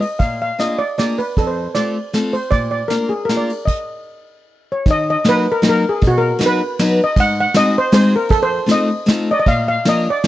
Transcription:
0.01 D#5, ride
0.19 A#2 F5, kick, ride
0.42 F5
0.59 A#3 D4 F4 G#4 D#5, snare, ride
0.78 D5
0.98 A#3 D4 F4 G#4 D5, snare, ride
1.18 B4, ride
1.37 F2 A4, kick, ride
1.47 C5
1.75 A3 C4 F4 A4 D5, snare, ride
2.13 A3 C4 F4 A4, snare, ride
2.33 C5, ride
2.51 A#2 D5, kick, ride
2.71 D5
2.88 A#3 D4 F4 A#4, snare, ride
3.09 G#4
3.25 A#4
3.29 A#3 D4 F4 A#4, snare, ride
3.37 D5
3.50 ride
3.65 D#5, kick, crash
4.72 C#5
4.86 D#3, kick, ride
4.91 D#5
5.10 D#5
5.24 F#3 A#3 D#4 F#4 A#4, snare, ride
5.29 B4
5.52 A#4
5.62 F#3 A#3 D#4 F#4 A#4, snare, ride
5.69 A#4
5.89 G#4
6.02 B2, kick, ride
6.07 F#4
6.18 A#4
6.39 F#3 B3 D#4 F#4 B4, snare, ride
6.46 B4
6.79 F#3 B3 D#4 F#4 B4, snare, ride
7.04 D#5
7.16 G#2 F#5, kick, ride
7.40 F#5
7.54 G#3 C4 D#4 F#4 G#4 D#5, snare, ride
7.78 C5
7.92 G#3 C4 D#4 F#4 G#4 C5, snare, ride
8.16 A#4
8.29 F2 A4, kick, ride
8.43 C5
8.66 A3 C4 D#4 F4 A4, snare, ride
8.71 D#5
9.06 A3 C4 D#4 F4 A4, snare, ride
9.31 D5 D#5
9.40 D#5
9.46 A#2 F5, kick, ride
9.68 F5
9.85 F3 A#3 D4 F4 A#4 D#5, snare, ride
10.10 D5
10.24 snare, ride

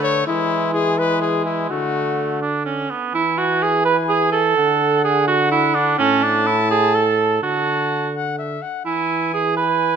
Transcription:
Already playing: D3 A3
0.03 C#5
0.27 E3 G#3 E4
0.74 G#4
0.99 G#3 B4
1.21 G#4
1.46 E4
1.70 D3 A3 F#4
2.42 D4
2.65 C#4
2.90 B3
3.14 E3 E4 G#5
3.38 F#4
3.63 G#4
3.85 B4 G#5
4.09 G#4
4.32 A4
4.57 D3 F#5
5.04 G#4
5.28 F#4 F#5
5.51 E4
5.75 D4
5.98 A2 C#4 A5
6.23 D4
6.46 E4
6.71 G#4
6.95 A4
7.42 D3 F#4 A5
8.14 F#5
8.39 E5
8.62 F#5
8.85 E3 E4 G#5
9.34 G#4
9.57 B4 G#5

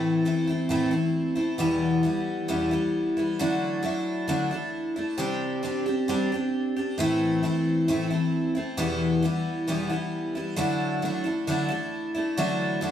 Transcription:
Already playing: A2 E3 A3 C4 E4
0.25 E3 A3 C4 E4
0.47 A3 C4 E4
0.69 A2 E3 A3 C4 E4
0.91 A3 C4 E4
1.36 A3 C4 E4
1.58 E2 B2 E3 G3 B3 E4
2.03 E3 G3 B3 E4
2.48 E2 B2 E3 G3 B3 E4
2.71 E3 G3 B3 E4
3.17 E3 G3 B3 E4
3.39 D3 F#3 A3 D4 E4
3.83 F#3 A3 D4 E4
4.28 D3 F#3 A3 D4 E4
4.51 A3 D4 E4
4.96 A3 D4 E4
5.18 C3 G3 C4 D4 G4
5.63 G3 C4 D4 G4
5.86 C4 D4 G4
6.08 C3 G3 C4 D4 G4
6.32 C4 D4 G4
6.77 C4 D4 G4
6.98 A2 E3 A3 C4 E4
7.43 E3 A3 C4 E4
7.88 A2 E3 A3 C4 E4
8.11 A3 C4 E4
8.55 A3 C4 E4
8.77 E2 B2 E3 G3 B3 E4
9.22 E3 G3 B3 E4
9.67 E2 B2 E3 G3 B3 E4
9.89 E3 G3 B3 E4
10.35 E3 G3 B3 E4
10.56 D3 F#3 A3 D4 E4
11.02 F#3 A3 D4 E4
11.24 A3 D4 E4
11.47 D3 F#3 A3 D4 E4
11.68 A3 D4 E4
12.15 A3 D4 E4
12.37 D3 F#3 A3 D4 E4
12.81 F#3 A3 D4 E4

